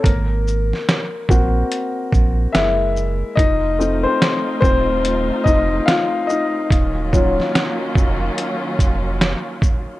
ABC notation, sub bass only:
X:1
M:4/4
L:1/16
Q:"Swing 16ths" 1/4=72
K:Ebdor
V:1 name="Sub bass" clef=bass
A,,,4 z2 B,,,2 z2 B,,,2 G,,,4 | F,,,4 z2 E,,,4 F,,,2 z4 | E,,,4 z2 F,,,2 z2 F,,,3 z3 |]